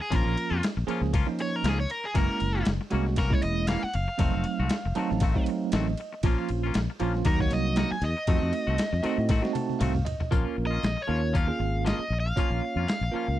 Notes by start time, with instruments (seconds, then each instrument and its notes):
0.00 overdriven electric guitar G#4, muted clean electric guitar stroke
0.10 fingered electric bass A#1, clean electric guitar F3 A#3 C#4 F4, tine electric piano F3 A#3 C#4 F4, overdriven electric guitar A#4, kick, ride
0.24 fingered electric bass A#1, clean electric guitar A#3 C#4 F4
0.36 muted clean electric guitar stroke, ride
0.51 fingered electric bass F2, clean electric guitar A#3 C#4 F4
0.63 snare, ride
0.77 fingered electric bass A#1, muted clean electric guitar stroke
0.87 tine electric piano F3 A#3 C#4 G#4, clean electric guitar F3 A#3 C#4 F4, ride
1.01 fingered electric bass C#2, muted clean electric guitar stroke, snare
1.13 clean electric guitar F3 A#3 C#4 F4, kick, ride
1.27 tine electric piano F3 A#3 C#4 D#4, muted clean electric guitar stroke
1.39 overdriven electric guitar C#5, muted clean electric guitar stroke, ride
1.56 overdriven electric guitar A#4
1.64 fingered electric bass C#2, clean electric guitar F3 A#3 C#4 F4, snare, ride
1.69 overdriven electric guitar G#4
1.79 overdriven electric guitar C#5, muted clean electric guitar stroke
1.90 overdriven electric guitar A#4, muted clean electric guitar stroke, ride
2.04 overdriven electric guitar G#4, muted clean electric guitar stroke
2.15 fingered electric bass F#1, clean electric guitar E3 A#3 C#4 F#4, tine electric piano G#3 A#3 C#4 E4, overdriven electric guitar A#4, kick, ride
2.29 clean electric guitar A#3 C#4 F#4
2.40 fingered electric bass F#1, muted clean electric guitar stroke, ride
2.54 clean electric guitar A#3 C#4 F#4
2.65 fingered electric bass F#1, snare, ride
2.81 muted clean electric guitar stroke, snare
2.90 fingered electric bass C2, clean electric guitar E3 A#3 C#4, tine electric piano G#3 A#3 C#4 F#4, ride
2.94 clean electric guitar F#4
3.06 muted clean electric guitar stroke, snare
3.16 clean electric guitar E3 A#3 C#4 F#4, overdriven electric guitar A#4, kick, ride
3.30 tine electric piano G#3 A#3 C#4 E4, overdriven electric guitar C#5, kick
3.42 fingered electric bass E1, overdriven electric guitar D#5, muted clean electric guitar stroke, ride
3.67 clean electric guitar E3 A#3 C#4, overdriven electric guitar F5, snare, ride
3.72 clean electric guitar F#4
3.83 overdriven electric guitar F#5, muted clean electric guitar stroke, muted fingered electric bass stroke
3.94 fingered electric bass F#1, overdriven electric guitar F5, muted clean electric guitar stroke, ride
4.08 muted clean electric guitar stroke
4.18 fingered electric bass F1, clean electric guitar D#3 A3 C4 F#4, tine electric piano F#3 A3 C4 D#4, kick, ride
4.34 fingered electric bass F1, clean electric guitar A3 C4 F#4
4.44 muted clean electric guitar stroke, ride
4.60 fingered electric bass C2, clean electric guitar A3 C4 F#4
4.69 snare, ride
4.85 fingered electric bass F1, muted clean electric guitar stroke
4.95 clean electric guitar D#3 A3 C4, tine electric piano F#3 A3 C4 D#4 A5, ride
4.99 clean electric guitar F#4
5.11 fingered electric bass A1, snare
5.20 clean electric guitar D#3 A3 C4 F#4, tine electric piano F5, kick, ride
5.35 tine electric piano F#3 A3 C4 D#4, muted clean electric guitar stroke, kick
5.46 muted clean electric guitar stroke, ride
5.72 fingered electric bass A1, clean electric guitar D#3 A3 C4 F#4, tine electric piano D#5, snare, ride
5.87 snare
5.97 muted clean electric guitar stroke, ride
6.13 muted clean electric guitar stroke
6.23 fingered electric bass A#1, tine electric piano F3 A#3 C#4 F4, clean electric guitar F3 A#3 C#4 F4, kick, ride
6.38 clean electric guitar A#3 C#4 F4
6.49 fingered electric bass A#1, muted clean electric guitar stroke, ride
6.63 clean electric guitar A#3 C#4 F4
6.74 fingered electric bass A#1, snare, ride
6.90 muted clean electric guitar stroke
7.00 fingered electric bass A#1, clean electric guitar F3 A#3 C#4 F4, tine electric piano F3 A#3 C#4 F4, ride
7.15 muted clean electric guitar stroke, snare
7.25 fingered electric bass D#2, clean electric guitar D#3 A#3 D#4 F#4, tine electric piano F#3 A#3 D#4 F#4, overdriven electric guitar A#4, kick, ride
7.40 tine electric piano F#3 A#3 D#4 F#4, overdriven electric guitar C#5, muted clean electric guitar stroke, kick
7.51 fingered electric bass C2, overdriven electric guitar D#5, muted clean electric guitar stroke, ride
7.76 clean electric guitar D#3 A#3 D#4 F#4, overdriven electric guitar D#5, snare, ride
7.91 overdriven electric guitar G#5, muted fingered electric bass stroke, muted clean electric guitar stroke, snare
8.02 fingered electric bass E2, overdriven electric guitar D#5, muted clean electric guitar stroke, ride
8.17 muted clean electric guitar stroke
8.27 fingered electric bass F2, clean electric guitar D#3 A3 C4 F#4, tine electric piano A3 C4 D#4 F#4, kick, ride
8.42 fingered electric bass F2, clean electric guitar A3 C4 F#4
8.53 muted clean electric guitar stroke, ride
8.67 fingered electric bass C2, clean electric guitar A3 C4 F#4
8.78 snare, ride
8.93 fingered electric bass F2, muted clean electric guitar stroke, snare
9.03 clean electric guitar D#3 A3 C4 F#4, tine electric piano A3 C4 D#4 F#4, muted fingered electric bass stroke, ride
9.18 fingered electric bass A2, muted clean electric guitar stroke
9.29 clean electric guitar D#3 A3 C4 F#4, kick, snare, ride
9.42 tine electric piano A3 C4 D#4 F#4, muted clean electric guitar stroke, snare
9.53 tine electric piano A5, muted clean electric guitar stroke, high tom, ride
9.70 high tom
9.79 fingered electric bass C2, clean electric guitar D#3 A3 C4 F#4, tine electric piano F5, mid tom, ride
9.94 muted clean electric guitar stroke, mid tom
10.05 tine electric piano D#5, muted clean electric guitar stroke, floor tom, ride
10.20 muted clean electric guitar stroke, floor tom
10.31 fingered electric bass A#1, clean electric guitar F3 A#3 C#4 F4, tine electric piano A#3 C#4 F4 A#4, kick, closed hi-hat
10.45 clean electric guitar A#3 C#4 F4
10.57 fingered electric bass A#1, muted clean electric guitar stroke
10.67 clean electric guitar F4, overdriven electric guitar D#5
10.72 clean electric guitar A#3 C#4
10.83 fingered electric bass A#1, snare, closed hi-hat
10.97 muted clean electric guitar stroke
11.02 overdriven electric guitar C#5
11.07 fingered electric bass D#2, clean electric guitar F3 A#3 C#4 F4, tine electric piano A#3 C#4 F4 A#4
11.22 muted clean electric guitar stroke
11.33 clean electric guitar F3 A#3 C#4 F4, overdriven electric guitar F5, kick, closed hi-hat
11.47 tine electric piano A#3 C#4 F4 G#4, muted clean electric guitar stroke
11.59 fingered electric bass G#1, muted clean electric guitar stroke
11.85 clean electric guitar F3 A#3 C#4 F4, overdriven electric guitar D#5, snare, closed hi-hat
11.99 muted fingered electric bass stroke, muted clean electric guitar stroke
12.10 fingered electric bass A#1, muted clean electric guitar stroke
12.20 overdriven electric guitar F5
12.26 muted clean electric guitar stroke
12.36 clean electric guitar F3 A#3 C#4 F4, tine electric piano A#3 C#4 F4 C#5, kick, closed hi-hat
12.50 fingered electric bass A#1, clean electric guitar A#3 C#4 F4
12.63 muted clean electric guitar stroke
12.76 fingered electric bass F2, clean electric guitar A#3 C#4 F4
12.88 overdriven electric guitar F5, snare, closed hi-hat
13.01 fingered electric bass A#1, muted clean electric guitar stroke
13.12 clean electric guitar F3 A#3, tine electric piano A#3 C#4 F4 A#4
13.16 clean electric guitar C#4 F4
13.28 fingered electric bass C#2, muted clean electric guitar stroke